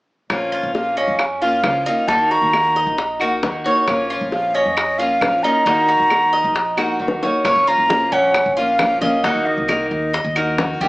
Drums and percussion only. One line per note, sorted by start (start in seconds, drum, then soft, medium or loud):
0.30 high bongo medium
0.30 claves medium
0.75 high bongo medium
0.97 high bongo soft
1.19 high bongo medium
1.19 claves medium
1.41 high bongo soft
1.64 high bongo medium
1.64 low bongo medium
1.64 claves medium
1.86 high bongo soft
2.09 high bongo medium
2.31 high bongo soft
2.53 high bongo medium
2.53 claves medium
2.76 high bongo soft
2.98 high bongo medium
3.21 high bongo soft
3.21 claves medium
3.43 high bongo medium
3.43 low bongo medium
3.88 high bongo medium
3.88 claves medium
4.32 high bongo medium
4.55 high bongo soft
4.77 high bongo medium
4.77 claves medium
5.00 high bongo soft
5.21 high bongo medium
5.21 low bongo medium
5.21 claves medium
5.45 high bongo soft
5.67 high bongo medium
5.89 high bongo soft
6.10 high bongo medium
6.10 claves medium
6.34 high bongo soft
6.56 high bongo medium
6.78 high bongo medium
6.78 claves medium
7.08 low bongo medium
7.23 low bongo medium
7.45 high bongo medium
7.45 high conga soft
7.45 claves medium
7.68 high conga soft
7.90 high bongo medium
7.90 high conga medium
8.12 high bongo soft
8.12 high conga soft
8.34 high bongo medium
8.34 high conga soft
8.34 claves medium
8.57 high bongo soft
8.57 high conga soft
8.79 high bongo medium
8.79 low bongo medium
8.79 high conga medium
8.79 claves medium
9.02 high bongo soft
9.02 high conga medium
9.24 high bongo medium
9.24 high conga soft
9.46 high bongo soft
9.46 high conga soft
9.69 high bongo medium
9.69 high conga medium
9.69 claves medium
9.92 high bongo soft
10.14 high bongo medium
10.14 high conga soft
10.36 high bongo soft
10.36 high conga soft
10.36 claves medium
10.58 high bongo medium
10.58 low bongo medium
10.58 high conga medium
10.81 high conga medium